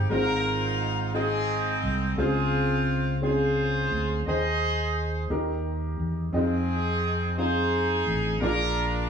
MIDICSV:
0, 0, Header, 1, 4, 480
1, 0, Start_track
1, 0, Tempo, 691244
1, 74, Time_signature, 6, 3, 24, 8
1, 6316, End_track
2, 0, Start_track
2, 0, Title_t, "Horn section"
2, 0, Program_c, 0, 61
2, 68, Note_on_c, 0, 70, 116
2, 71, Note_on_c, 0, 63, 91
2, 74, Note_on_c, 0, 65, 86
2, 524, Note_off_c, 0, 70, 0
2, 765, Note_off_c, 0, 63, 0
2, 767, Note_off_c, 0, 65, 0
2, 792, Note_on_c, 0, 63, 85
2, 794, Note_on_c, 0, 60, 76
2, 794, Note_on_c, 0, 68, 111
2, 1306, Note_off_c, 0, 68, 0
2, 1485, Note_off_c, 0, 63, 0
2, 1486, Note_off_c, 0, 60, 0
2, 1514, Note_on_c, 0, 68, 99
2, 1515, Note_on_c, 0, 65, 82
2, 1516, Note_on_c, 0, 60, 78
2, 1966, Note_off_c, 0, 68, 0
2, 2207, Note_off_c, 0, 60, 0
2, 2207, Note_off_c, 0, 65, 0
2, 2238, Note_on_c, 0, 72, 96
2, 2244, Note_on_c, 0, 65, 67
2, 2246, Note_on_c, 0, 68, 70
2, 2928, Note_off_c, 0, 72, 0
2, 2931, Note_off_c, 0, 65, 0
2, 2932, Note_off_c, 0, 68, 0
2, 2966, Note_on_c, 0, 75, 117
2, 2974, Note_on_c, 0, 68, 87
2, 2974, Note_on_c, 0, 72, 86
2, 3500, Note_off_c, 0, 75, 0
2, 3656, Note_off_c, 0, 68, 0
2, 3656, Note_off_c, 0, 72, 0
2, 4401, Note_on_c, 0, 68, 96
2, 4404, Note_on_c, 0, 63, 66
2, 4409, Note_on_c, 0, 60, 65
2, 5090, Note_off_c, 0, 68, 0
2, 5091, Note_off_c, 0, 63, 0
2, 5094, Note_off_c, 0, 60, 0
2, 5124, Note_on_c, 0, 72, 113
2, 5128, Note_on_c, 0, 63, 83
2, 5131, Note_on_c, 0, 68, 86
2, 5599, Note_off_c, 0, 72, 0
2, 5814, Note_off_c, 0, 63, 0
2, 5816, Note_off_c, 0, 68, 0
2, 5845, Note_on_c, 0, 70, 119
2, 5847, Note_on_c, 0, 62, 86
2, 5850, Note_on_c, 0, 65, 88
2, 6293, Note_off_c, 0, 70, 0
2, 6316, Note_off_c, 0, 62, 0
2, 6316, Note_off_c, 0, 65, 0
2, 6316, End_track
3, 0, Start_track
3, 0, Title_t, "Upright piano"
3, 0, Program_c, 1, 0
3, 0, Control_c, 1, 64, 127
3, 0, Note_on_c, 1, 44, 66
3, 0, Note_on_c, 1, 56, 61
3, 0, Note_on_c, 1, 60, 62
3, 0, Note_on_c, 1, 63, 62
3, 0, Note_on_c, 1, 67, 58
3, 0, Note_on_c, 1, 72, 69
3, 0, Note_on_c, 1, 79, 71
3, 69, Note_off_c, 1, 56, 0
3, 69, Note_on_c, 1, 56, 81
3, 72, Note_off_c, 1, 60, 0
3, 72, Note_on_c, 1, 60, 71
3, 74, Note_off_c, 1, 44, 0
3, 74, Note_off_c, 1, 63, 0
3, 74, Note_on_c, 1, 44, 68
3, 74, Note_on_c, 1, 63, 65
3, 78, Note_off_c, 1, 72, 0
3, 78, Note_on_c, 1, 72, 86
3, 80, Note_on_c, 1, 65, 69
3, 83, Control_c, 1, 64, 0
3, 84, Note_off_c, 1, 67, 0
3, 87, Note_off_c, 1, 79, 0
3, 220, Control_c, 1, 64, 127
3, 605, Note_off_c, 1, 56, 0
3, 606, Note_off_c, 1, 60, 0
3, 607, Note_off_c, 1, 63, 0
3, 609, Note_off_c, 1, 72, 0
3, 610, Note_off_c, 1, 65, 0
3, 767, Note_off_c, 1, 44, 0
3, 792, Note_on_c, 1, 56, 62
3, 795, Note_on_c, 1, 60, 58
3, 797, Note_on_c, 1, 63, 59
3, 798, Note_on_c, 1, 65, 61
3, 804, Note_on_c, 1, 68, 73
3, 1326, Note_off_c, 1, 56, 0
3, 1327, Note_off_c, 1, 60, 0
3, 1328, Note_off_c, 1, 63, 0
3, 1329, Note_off_c, 1, 65, 0
3, 1332, Note_off_c, 1, 68, 0
3, 1512, Note_on_c, 1, 56, 78
3, 1516, Note_on_c, 1, 60, 71
3, 1518, Note_on_c, 1, 65, 77
3, 1520, Note_on_c, 1, 49, 67
3, 1522, Control_c, 1, 64, 0
3, 1522, Note_on_c, 1, 72, 84
3, 1636, Control_c, 1, 64, 127
3, 2046, Note_off_c, 1, 56, 0
3, 2048, Note_off_c, 1, 60, 0
3, 2048, Note_off_c, 1, 65, 0
3, 2051, Note_off_c, 1, 72, 0
3, 2209, Note_off_c, 1, 49, 0
3, 2235, Note_on_c, 1, 56, 66
3, 2237, Note_on_c, 1, 60, 60
3, 2239, Note_on_c, 1, 61, 60
3, 2243, Note_on_c, 1, 65, 57
3, 2246, Note_on_c, 1, 68, 73
3, 2767, Note_off_c, 1, 56, 0
3, 2768, Note_off_c, 1, 60, 0
3, 2769, Note_off_c, 1, 61, 0
3, 2771, Note_off_c, 1, 65, 0
3, 2772, Note_off_c, 1, 68, 0
3, 2962, Control_c, 1, 64, 0
3, 2965, Note_on_c, 1, 63, 73
3, 2971, Note_on_c, 1, 51, 65
3, 2973, Note_on_c, 1, 68, 76
3, 2976, Note_on_c, 1, 72, 91
3, 3087, Control_c, 1, 64, 127
3, 3492, Note_off_c, 1, 63, 0
3, 3496, Note_off_c, 1, 68, 0
3, 3497, Note_off_c, 1, 72, 0
3, 3654, Note_off_c, 1, 51, 0
3, 3680, Note_on_c, 1, 63, 78
3, 3683, Control_c, 1, 64, 0
3, 3684, Note_on_c, 1, 51, 73
3, 3684, Note_on_c, 1, 67, 72
3, 3691, Note_on_c, 1, 70, 90
3, 3813, Control_c, 1, 64, 127
3, 4210, Note_off_c, 1, 63, 0
3, 4212, Note_off_c, 1, 67, 0
3, 4215, Note_off_c, 1, 70, 0
3, 4371, Note_off_c, 1, 51, 0
3, 4393, Note_on_c, 1, 60, 77
3, 4396, Note_on_c, 1, 63, 70
3, 4402, Note_on_c, 1, 65, 68
3, 4404, Control_c, 1, 64, 0
3, 4404, Note_on_c, 1, 68, 70
3, 4405, Note_on_c, 1, 75, 87
3, 4520, Control_c, 1, 64, 127
3, 4926, Note_off_c, 1, 60, 0
3, 4928, Note_off_c, 1, 63, 0
3, 4931, Note_off_c, 1, 65, 0
3, 4932, Note_off_c, 1, 68, 0
3, 4932, Note_off_c, 1, 75, 0
3, 5124, Note_on_c, 1, 60, 65
3, 5125, Note_on_c, 1, 65, 61
3, 5126, Note_on_c, 1, 63, 62
3, 5130, Note_on_c, 1, 68, 59
3, 5135, Note_on_c, 1, 77, 70
3, 5652, Note_off_c, 1, 60, 0
3, 5653, Note_off_c, 1, 63, 0
3, 5653, Note_off_c, 1, 65, 0
3, 5655, Note_off_c, 1, 68, 0
3, 5657, Note_off_c, 1, 77, 0
3, 5842, Note_on_c, 1, 58, 83
3, 5842, Note_on_c, 1, 62, 76
3, 5844, Control_c, 1, 64, 0
3, 5844, Note_on_c, 1, 46, 66
3, 5848, Note_on_c, 1, 68, 73
3, 5849, Note_on_c, 1, 65, 72
3, 5850, Note_on_c, 1, 74, 86
3, 5978, Control_c, 1, 64, 127
3, 6316, Note_off_c, 1, 46, 0
3, 6316, Note_off_c, 1, 58, 0
3, 6316, Note_off_c, 1, 62, 0
3, 6316, Note_off_c, 1, 65, 0
3, 6316, Note_off_c, 1, 68, 0
3, 6316, Note_off_c, 1, 74, 0
3, 6316, End_track
4, 0, Start_track
4, 0, Title_t, "Fingered electric bass"
4, 0, Program_c, 2, 33
4, 67, Note_on_c, 2, 32, 92
4, 1243, Note_off_c, 2, 32, 0
4, 1274, Note_on_c, 2, 36, 103
4, 1495, Note_off_c, 2, 36, 0
4, 1511, Note_on_c, 2, 37, 103
4, 2684, Note_off_c, 2, 37, 0
4, 2718, Note_on_c, 2, 38, 97
4, 2937, Note_off_c, 2, 38, 0
4, 2959, Note_on_c, 2, 39, 101
4, 3649, Note_off_c, 2, 39, 0
4, 3681, Note_on_c, 2, 39, 104
4, 4130, Note_off_c, 2, 39, 0
4, 4163, Note_on_c, 2, 40, 86
4, 4380, Note_off_c, 2, 40, 0
4, 4397, Note_on_c, 2, 41, 97
4, 5569, Note_off_c, 2, 41, 0
4, 5601, Note_on_c, 2, 33, 94
4, 5819, Note_off_c, 2, 33, 0
4, 5847, Note_on_c, 2, 34, 108
4, 6316, Note_off_c, 2, 34, 0
4, 6316, End_track
0, 0, End_of_file